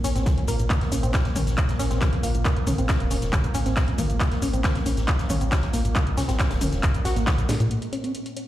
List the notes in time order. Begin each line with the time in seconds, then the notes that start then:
Already playing: A#2 A#3
0.04 A#1 C#4, closed hi-hat, open hi-hat, shaker
0.15 A#1 C4, snare, closed hi-hat, shaker
0.26 kick, snare, closed hi-hat, mid tom, shaker
0.37 A#1, closed hi-hat
0.47 A#1 A#3, closed hi-hat, open hi-hat, shaker
0.59 A#1, closed hi-hat, shaker
0.70 A#3, kick, clap, closed hi-hat, mid tom, shaker
0.81 A#1, snare, closed hi-hat
0.92 A#1 C#4, closed hi-hat, open hi-hat, shaker
1.03 A#1 C4, closed hi-hat, shaker
1.13 kick, snare, clap, closed hi-hat, shaker
1.25 A#1, snare, closed hi-hat
1.36 A#1 C#4, closed hi-hat, open hi-hat, mid tom, shaker
1.47 A#1, snare, closed hi-hat, shaker
1.58 kick, clap, closed hi-hat, shaker
1.69 A#1, snare, closed hi-hat, shaker
1.79 A#1 C#4, snare, closed hi-hat, open hi-hat, shaker
1.90 A#1 C4, snare, closed hi-hat, shaker
2.01 kick, snare, clap, closed hi-hat, mid tom, shaker
2.13 A#1, closed hi-hat
2.23 A#1 A#3, closed hi-hat, open hi-hat, shaker
2.34 A#1, closed hi-hat, shaker
2.45 A#3, kick, clap, closed hi-hat, shaker
2.56 A#1, closed hi-hat
2.67 C2 C#4, closed hi-hat, open hi-hat, mid tom, shaker
2.78 A#1 C4, closed hi-hat, shaker
2.89 kick, snare, clap, closed hi-hat, shaker
3.00 F1, closed hi-hat
3.10 F1 C#4, closed hi-hat, open hi-hat, shaker
3.21 F1, snare, closed hi-hat, shaker
3.33 kick, clap, closed hi-hat, mid tom, shaker
3.44 A#1, closed hi-hat, shaker
3.54 A#1 C#4, closed hi-hat, open hi-hat, shaker
3.66 A#1 C4, snare, closed hi-hat, shaker
3.76 kick, snare, clap, closed hi-hat, shaker
3.88 A#1, closed hi-hat
3.98 A#1 A#3, closed hi-hat, open hi-hat, mid tom, shaker
4.10 A#1, closed hi-hat, shaker
4.20 A#3, kick, clap, closed hi-hat, shaker
4.31 A#1, snare, closed hi-hat
4.42 A#1 C#4, closed hi-hat, open hi-hat, shaker
4.53 A#1 C4, closed hi-hat, shaker
4.64 kick, snare, clap, closed hi-hat, mid tom, shaker
4.75 A#1, snare, closed hi-hat
4.86 A#1 C#4, closed hi-hat, open hi-hat, shaker
4.97 A#1, snare, closed hi-hat, shaker
5.07 kick, clap, closed hi-hat, shaker
5.19 A#1, snare, closed hi-hat, shaker
5.29 A#1 C#4, closed hi-hat, open hi-hat, mid tom, shaker
5.41 A#1 C4, closed hi-hat, shaker
5.52 kick, snare, clap, closed hi-hat, shaker
5.62 A#1, snare, closed hi-hat
5.73 A#1 A#3, closed hi-hat, open hi-hat, shaker
5.85 A#1, closed hi-hat, shaker
5.95 A#3, kick, clap, closed hi-hat, mid tom, shaker
6.07 A#1, closed hi-hat
6.17 C2 C#4, snare, closed hi-hat, open hi-hat, shaker
6.28 A#1 C4, snare, closed hi-hat, shaker
6.39 kick, snare, clap, closed hi-hat, shaker
6.51 F1, snare, closed hi-hat, shaker
6.61 F1 C#4, closed hi-hat, open hi-hat, mid tom, shaker
6.72 F1, snare, closed hi-hat, shaker
6.83 kick, clap, closed hi-hat, shaker
6.94 A#1, closed hi-hat, shaker
7.05 A#1 F#4, snare, closed hi-hat, open hi-hat, shaker
7.16 A#1 A#3, snare, closed hi-hat, shaker
7.27 kick, snare, clap, closed hi-hat, mid tom, shaker
7.38 A#2, closed hi-hat, shaker
7.49 A#2 G#3, snare, closed hi-hat, open hi-hat, shaker
7.60 A#2, closed hi-hat, shaker
7.71 A#2 A#3, closed hi-hat
7.82 closed hi-hat
7.93 C#4, closed hi-hat
8.04 C4, closed hi-hat
8.15 closed hi-hat
8.26 closed hi-hat
8.37 C#4, closed hi-hat